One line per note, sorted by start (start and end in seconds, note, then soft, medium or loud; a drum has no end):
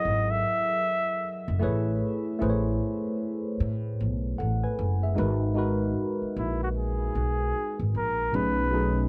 0.00 1.63 F#3 medium
0.00 1.61 E4 medium
0.00 1.62 G#4 medium
0.00 1.63 A4 soft
0.00 1.64 A#4 medium
0.00 0.32 D#5 loud
0.00 1.63 D#5 medium
0.00 1.63 F#5 medium
0.05 0.41 G#1 medium
0.31 1.63 E5 loud
1.48 1.61 F#1 medium
1.59 1.98 A1 medium
1.59 2.29 A3 medium
1.59 2.30 E4 medium
1.59 2.30 G#4 medium
1.59 2.31 B4 medium
1.64 2.31 C#5 loud
2.39 2.77 A1 medium
2.39 3.72 A3 medium
2.39 3.73 E4 medium
2.39 3.73 G#4 medium
2.39 3.74 B4 medium
2.43 2.50 C5 medium
2.50 3.78 C#5 medium
3.60 4.02 A2 medium
4.00 4.36 B1 medium
4.38 4.62 A1 medium
4.38 4.62 A4 soft
4.38 4.62 F#5 medium
4.64 5.01 B4 medium
4.64 5.01 G#5 medium
4.79 5.14 F#1 medium
5.03 5.40 G#4 medium
5.03 5.40 E5 medium
5.15 5.92 G#1 loud
5.15 5.50 G#3 medium
5.15 5.51 D#4 medium
5.15 5.51 F#4 medium
5.15 5.52 A#4 medium
5.19 5.52 B4 medium
5.54 6.88 G#3 medium
5.54 6.88 D#4 medium
5.54 6.89 F#4 medium
5.54 6.90 A#4 medium
5.58 6.90 B4 medium
6.22 muted upright bass stroke soft
6.36 7.11 A#1 medium
6.36 6.60 E4 medium
6.63 6.69 F#4 medium
6.77 7.90 G#4 medium
7.15 7.51 B1 medium
7.79 7.92 G#1 medium
7.95 8.30 A#1 medium
7.95 8.37 A#4 medium
8.32 9.08 B1 loud
8.32 8.66 B2 medium
8.32 8.67 F#3 medium
8.32 8.67 A3 medium
8.32 8.68 C#4 medium
8.32 8.68 D#4 medium
8.32 9.09 B4 loud
8.36 8.69 G#4 medium
8.71 9.09 B2 medium
8.71 9.09 F#3 medium
8.71 9.09 A3 medium
8.71 9.09 C#4 medium
8.71 9.09 D#4 medium
8.75 9.09 G#4 medium